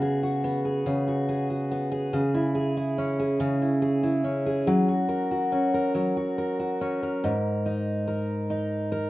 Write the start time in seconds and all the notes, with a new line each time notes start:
Already playing: C#3 B3 F#4
0.02 G#4
0.23 F#4
0.44 B3
0.65 G#4
0.86 C#3
1.08 F#4
1.29 G#4
1.50 F#4
1.71 B3
1.92 G#4
2.13 C#3
2.34 E4
2.55 G#4
2.77 E4
2.98 C#4
3.19 G#4
3.40 C#3
3.62 E4
3.82 G#4
4.03 E4
4.24 C#4
4.46 G#4
4.67 F#3
4.88 F#4
5.09 A#4
5.31 F#4
5.52 C#4
5.74 A#4
5.95 F#3
6.17 F#4
6.38 A#4
6.60 F#4
6.81 C#4
7.03 A#4
7.24 G#2
7.66 D#4
8.07 A#4
8.50 D#4
8.92 A#4